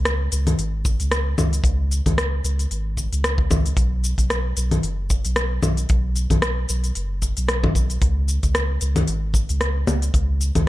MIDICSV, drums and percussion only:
0, 0, Header, 1, 2, 480
1, 0, Start_track
1, 0, Tempo, 530973
1, 1487, Time_signature, 4, 2, 24, 8
1, 9657, End_track
2, 0, Start_track
2, 0, Title_t, "Drums"
2, 49, Note_on_c, 9, 37, 103
2, 49, Note_on_c, 9, 46, 53
2, 53, Note_on_c, 9, 82, 30
2, 139, Note_off_c, 9, 37, 0
2, 139, Note_off_c, 9, 46, 0
2, 144, Note_off_c, 9, 82, 0
2, 288, Note_on_c, 9, 46, 55
2, 293, Note_on_c, 9, 82, 80
2, 379, Note_off_c, 9, 46, 0
2, 383, Note_off_c, 9, 82, 0
2, 423, Note_on_c, 9, 46, 46
2, 423, Note_on_c, 9, 64, 62
2, 428, Note_on_c, 9, 82, 48
2, 513, Note_off_c, 9, 46, 0
2, 513, Note_off_c, 9, 64, 0
2, 518, Note_off_c, 9, 82, 0
2, 531, Note_on_c, 9, 46, 55
2, 535, Note_on_c, 9, 82, 32
2, 621, Note_off_c, 9, 46, 0
2, 626, Note_off_c, 9, 82, 0
2, 769, Note_on_c, 9, 36, 105
2, 772, Note_on_c, 9, 82, 75
2, 859, Note_off_c, 9, 36, 0
2, 862, Note_off_c, 9, 82, 0
2, 902, Note_on_c, 9, 46, 49
2, 907, Note_on_c, 9, 82, 46
2, 993, Note_off_c, 9, 46, 0
2, 997, Note_off_c, 9, 82, 0
2, 1008, Note_on_c, 9, 37, 96
2, 1008, Note_on_c, 9, 46, 53
2, 1013, Note_on_c, 9, 82, 34
2, 1098, Note_off_c, 9, 37, 0
2, 1098, Note_off_c, 9, 46, 0
2, 1103, Note_off_c, 9, 82, 0
2, 1247, Note_on_c, 9, 46, 31
2, 1247, Note_on_c, 9, 64, 77
2, 1252, Note_on_c, 9, 82, 72
2, 1338, Note_off_c, 9, 46, 0
2, 1338, Note_off_c, 9, 64, 0
2, 1342, Note_off_c, 9, 82, 0
2, 1382, Note_on_c, 9, 46, 52
2, 1387, Note_on_c, 9, 82, 49
2, 1473, Note_off_c, 9, 46, 0
2, 1478, Note_off_c, 9, 82, 0
2, 1479, Note_on_c, 9, 36, 121
2, 1489, Note_on_c, 9, 46, 54
2, 1493, Note_on_c, 9, 82, 37
2, 1570, Note_off_c, 9, 36, 0
2, 1579, Note_off_c, 9, 46, 0
2, 1584, Note_off_c, 9, 82, 0
2, 1730, Note_on_c, 9, 46, 31
2, 1735, Note_on_c, 9, 82, 80
2, 1820, Note_off_c, 9, 46, 0
2, 1825, Note_off_c, 9, 82, 0
2, 1862, Note_on_c, 9, 36, 66
2, 1864, Note_on_c, 9, 46, 42
2, 1864, Note_on_c, 9, 64, 56
2, 1869, Note_on_c, 9, 82, 47
2, 1952, Note_off_c, 9, 36, 0
2, 1955, Note_off_c, 9, 46, 0
2, 1955, Note_off_c, 9, 64, 0
2, 1959, Note_off_c, 9, 82, 0
2, 1971, Note_on_c, 9, 37, 103
2, 1971, Note_on_c, 9, 46, 53
2, 1975, Note_on_c, 9, 82, 34
2, 2061, Note_off_c, 9, 37, 0
2, 2061, Note_off_c, 9, 46, 0
2, 2066, Note_off_c, 9, 82, 0
2, 2210, Note_on_c, 9, 46, 54
2, 2215, Note_on_c, 9, 82, 77
2, 2301, Note_off_c, 9, 46, 0
2, 2305, Note_off_c, 9, 82, 0
2, 2344, Note_on_c, 9, 46, 47
2, 2349, Note_on_c, 9, 82, 49
2, 2435, Note_off_c, 9, 46, 0
2, 2439, Note_off_c, 9, 82, 0
2, 2450, Note_on_c, 9, 46, 53
2, 2455, Note_on_c, 9, 82, 33
2, 2541, Note_off_c, 9, 46, 0
2, 2545, Note_off_c, 9, 82, 0
2, 2688, Note_on_c, 9, 36, 55
2, 2693, Note_on_c, 9, 82, 75
2, 2778, Note_off_c, 9, 36, 0
2, 2783, Note_off_c, 9, 82, 0
2, 2825, Note_on_c, 9, 46, 46
2, 2830, Note_on_c, 9, 82, 51
2, 2916, Note_off_c, 9, 46, 0
2, 2921, Note_off_c, 9, 82, 0
2, 2931, Note_on_c, 9, 37, 102
2, 2931, Note_on_c, 9, 46, 54
2, 2935, Note_on_c, 9, 82, 35
2, 3021, Note_off_c, 9, 37, 0
2, 3021, Note_off_c, 9, 46, 0
2, 3026, Note_off_c, 9, 82, 0
2, 3056, Note_on_c, 9, 36, 108
2, 3146, Note_off_c, 9, 36, 0
2, 3169, Note_on_c, 9, 46, 31
2, 3169, Note_on_c, 9, 64, 76
2, 3172, Note_on_c, 9, 36, 107
2, 3174, Note_on_c, 9, 82, 79
2, 3260, Note_off_c, 9, 46, 0
2, 3260, Note_off_c, 9, 64, 0
2, 3262, Note_off_c, 9, 36, 0
2, 3265, Note_off_c, 9, 82, 0
2, 3305, Note_on_c, 9, 46, 48
2, 3310, Note_on_c, 9, 82, 48
2, 3396, Note_off_c, 9, 46, 0
2, 3400, Note_off_c, 9, 82, 0
2, 3405, Note_on_c, 9, 36, 124
2, 3409, Note_on_c, 9, 46, 55
2, 3414, Note_on_c, 9, 82, 35
2, 3496, Note_off_c, 9, 36, 0
2, 3499, Note_off_c, 9, 46, 0
2, 3504, Note_off_c, 9, 82, 0
2, 3650, Note_on_c, 9, 46, 31
2, 3655, Note_on_c, 9, 82, 84
2, 3740, Note_off_c, 9, 46, 0
2, 3745, Note_off_c, 9, 82, 0
2, 3778, Note_on_c, 9, 36, 70
2, 3783, Note_on_c, 9, 46, 45
2, 3788, Note_on_c, 9, 82, 47
2, 3869, Note_off_c, 9, 36, 0
2, 3873, Note_off_c, 9, 46, 0
2, 3878, Note_off_c, 9, 82, 0
2, 3889, Note_on_c, 9, 37, 96
2, 3889, Note_on_c, 9, 46, 52
2, 3894, Note_on_c, 9, 82, 31
2, 3980, Note_off_c, 9, 37, 0
2, 3980, Note_off_c, 9, 46, 0
2, 3984, Note_off_c, 9, 82, 0
2, 4128, Note_on_c, 9, 46, 51
2, 4133, Note_on_c, 9, 82, 82
2, 4218, Note_off_c, 9, 46, 0
2, 4223, Note_off_c, 9, 82, 0
2, 4262, Note_on_c, 9, 46, 45
2, 4262, Note_on_c, 9, 64, 59
2, 4266, Note_on_c, 9, 82, 46
2, 4352, Note_off_c, 9, 46, 0
2, 4352, Note_off_c, 9, 64, 0
2, 4357, Note_off_c, 9, 82, 0
2, 4369, Note_on_c, 9, 46, 53
2, 4374, Note_on_c, 9, 82, 34
2, 4459, Note_off_c, 9, 46, 0
2, 4464, Note_off_c, 9, 82, 0
2, 4612, Note_on_c, 9, 36, 99
2, 4612, Note_on_c, 9, 82, 83
2, 4702, Note_off_c, 9, 82, 0
2, 4703, Note_off_c, 9, 36, 0
2, 4742, Note_on_c, 9, 46, 44
2, 4747, Note_on_c, 9, 82, 49
2, 4833, Note_off_c, 9, 46, 0
2, 4838, Note_off_c, 9, 82, 0
2, 4846, Note_on_c, 9, 37, 95
2, 4846, Note_on_c, 9, 46, 54
2, 4850, Note_on_c, 9, 82, 33
2, 4936, Note_off_c, 9, 37, 0
2, 4936, Note_off_c, 9, 46, 0
2, 4941, Note_off_c, 9, 82, 0
2, 5085, Note_on_c, 9, 46, 30
2, 5085, Note_on_c, 9, 64, 73
2, 5090, Note_on_c, 9, 82, 80
2, 5176, Note_off_c, 9, 46, 0
2, 5176, Note_off_c, 9, 64, 0
2, 5180, Note_off_c, 9, 82, 0
2, 5219, Note_on_c, 9, 46, 45
2, 5223, Note_on_c, 9, 82, 48
2, 5309, Note_off_c, 9, 46, 0
2, 5314, Note_off_c, 9, 82, 0
2, 5324, Note_on_c, 9, 46, 54
2, 5329, Note_on_c, 9, 82, 36
2, 5331, Note_on_c, 9, 36, 120
2, 5415, Note_off_c, 9, 46, 0
2, 5419, Note_off_c, 9, 82, 0
2, 5422, Note_off_c, 9, 36, 0
2, 5565, Note_on_c, 9, 46, 30
2, 5570, Note_on_c, 9, 82, 77
2, 5656, Note_off_c, 9, 46, 0
2, 5660, Note_off_c, 9, 82, 0
2, 5697, Note_on_c, 9, 36, 65
2, 5700, Note_on_c, 9, 46, 41
2, 5700, Note_on_c, 9, 64, 59
2, 5705, Note_on_c, 9, 82, 44
2, 5787, Note_off_c, 9, 36, 0
2, 5791, Note_off_c, 9, 46, 0
2, 5791, Note_off_c, 9, 64, 0
2, 5795, Note_off_c, 9, 82, 0
2, 5805, Note_on_c, 9, 37, 100
2, 5805, Note_on_c, 9, 46, 52
2, 5809, Note_on_c, 9, 82, 35
2, 5895, Note_off_c, 9, 37, 0
2, 5895, Note_off_c, 9, 46, 0
2, 5900, Note_off_c, 9, 82, 0
2, 6046, Note_on_c, 9, 46, 46
2, 6050, Note_on_c, 9, 82, 87
2, 6136, Note_off_c, 9, 46, 0
2, 6141, Note_off_c, 9, 82, 0
2, 6180, Note_on_c, 9, 46, 43
2, 6185, Note_on_c, 9, 82, 50
2, 6271, Note_off_c, 9, 46, 0
2, 6275, Note_off_c, 9, 82, 0
2, 6286, Note_on_c, 9, 46, 55
2, 6291, Note_on_c, 9, 82, 34
2, 6376, Note_off_c, 9, 46, 0
2, 6381, Note_off_c, 9, 82, 0
2, 6526, Note_on_c, 9, 46, 27
2, 6528, Note_on_c, 9, 36, 56
2, 6531, Note_on_c, 9, 82, 86
2, 6617, Note_off_c, 9, 46, 0
2, 6619, Note_off_c, 9, 36, 0
2, 6622, Note_off_c, 9, 82, 0
2, 6660, Note_on_c, 9, 46, 46
2, 6665, Note_on_c, 9, 82, 51
2, 6750, Note_off_c, 9, 46, 0
2, 6755, Note_off_c, 9, 82, 0
2, 6766, Note_on_c, 9, 37, 100
2, 6766, Note_on_c, 9, 46, 57
2, 6771, Note_on_c, 9, 82, 35
2, 6857, Note_off_c, 9, 37, 0
2, 6857, Note_off_c, 9, 46, 0
2, 6862, Note_off_c, 9, 82, 0
2, 6902, Note_on_c, 9, 64, 78
2, 6903, Note_on_c, 9, 36, 106
2, 6992, Note_off_c, 9, 64, 0
2, 6994, Note_off_c, 9, 36, 0
2, 7007, Note_on_c, 9, 36, 98
2, 7010, Note_on_c, 9, 46, 27
2, 7014, Note_on_c, 9, 82, 79
2, 7098, Note_off_c, 9, 36, 0
2, 7100, Note_off_c, 9, 46, 0
2, 7105, Note_off_c, 9, 82, 0
2, 7141, Note_on_c, 9, 46, 45
2, 7145, Note_on_c, 9, 82, 46
2, 7231, Note_off_c, 9, 46, 0
2, 7236, Note_off_c, 9, 82, 0
2, 7247, Note_on_c, 9, 36, 124
2, 7247, Note_on_c, 9, 46, 58
2, 7252, Note_on_c, 9, 82, 36
2, 7337, Note_off_c, 9, 36, 0
2, 7338, Note_off_c, 9, 46, 0
2, 7342, Note_off_c, 9, 82, 0
2, 7486, Note_on_c, 9, 46, 28
2, 7491, Note_on_c, 9, 82, 76
2, 7577, Note_off_c, 9, 46, 0
2, 7581, Note_off_c, 9, 82, 0
2, 7621, Note_on_c, 9, 46, 41
2, 7623, Note_on_c, 9, 36, 67
2, 7626, Note_on_c, 9, 82, 44
2, 7711, Note_off_c, 9, 46, 0
2, 7713, Note_off_c, 9, 36, 0
2, 7716, Note_off_c, 9, 82, 0
2, 7727, Note_on_c, 9, 37, 97
2, 7727, Note_on_c, 9, 46, 50
2, 7732, Note_on_c, 9, 82, 32
2, 7817, Note_off_c, 9, 37, 0
2, 7817, Note_off_c, 9, 46, 0
2, 7822, Note_off_c, 9, 82, 0
2, 7964, Note_on_c, 9, 46, 51
2, 7968, Note_on_c, 9, 82, 79
2, 8054, Note_off_c, 9, 46, 0
2, 8059, Note_off_c, 9, 82, 0
2, 8098, Note_on_c, 9, 46, 46
2, 8098, Note_on_c, 9, 64, 65
2, 8103, Note_on_c, 9, 82, 46
2, 8189, Note_off_c, 9, 46, 0
2, 8189, Note_off_c, 9, 64, 0
2, 8193, Note_off_c, 9, 82, 0
2, 8204, Note_on_c, 9, 46, 52
2, 8208, Note_on_c, 9, 82, 35
2, 8294, Note_off_c, 9, 46, 0
2, 8299, Note_off_c, 9, 82, 0
2, 8442, Note_on_c, 9, 36, 100
2, 8449, Note_on_c, 9, 82, 83
2, 8532, Note_off_c, 9, 36, 0
2, 8539, Note_off_c, 9, 82, 0
2, 8581, Note_on_c, 9, 46, 44
2, 8585, Note_on_c, 9, 82, 47
2, 8671, Note_off_c, 9, 46, 0
2, 8676, Note_off_c, 9, 82, 0
2, 8685, Note_on_c, 9, 37, 94
2, 8685, Note_on_c, 9, 46, 52
2, 8689, Note_on_c, 9, 82, 35
2, 8775, Note_off_c, 9, 37, 0
2, 8775, Note_off_c, 9, 46, 0
2, 8780, Note_off_c, 9, 82, 0
2, 8926, Note_on_c, 9, 46, 29
2, 8926, Note_on_c, 9, 64, 81
2, 8930, Note_on_c, 9, 82, 74
2, 9016, Note_off_c, 9, 46, 0
2, 9016, Note_off_c, 9, 64, 0
2, 9021, Note_off_c, 9, 82, 0
2, 9060, Note_on_c, 9, 46, 48
2, 9065, Note_on_c, 9, 82, 50
2, 9150, Note_off_c, 9, 46, 0
2, 9155, Note_off_c, 9, 82, 0
2, 9166, Note_on_c, 9, 36, 113
2, 9168, Note_on_c, 9, 46, 55
2, 9173, Note_on_c, 9, 82, 32
2, 9256, Note_off_c, 9, 36, 0
2, 9259, Note_off_c, 9, 46, 0
2, 9263, Note_off_c, 9, 82, 0
2, 9408, Note_on_c, 9, 46, 31
2, 9413, Note_on_c, 9, 82, 79
2, 9499, Note_off_c, 9, 46, 0
2, 9503, Note_off_c, 9, 82, 0
2, 9540, Note_on_c, 9, 46, 44
2, 9540, Note_on_c, 9, 64, 63
2, 9542, Note_on_c, 9, 36, 64
2, 9545, Note_on_c, 9, 82, 43
2, 9631, Note_off_c, 9, 46, 0
2, 9631, Note_off_c, 9, 64, 0
2, 9632, Note_off_c, 9, 36, 0
2, 9636, Note_off_c, 9, 82, 0
2, 9657, End_track
0, 0, End_of_file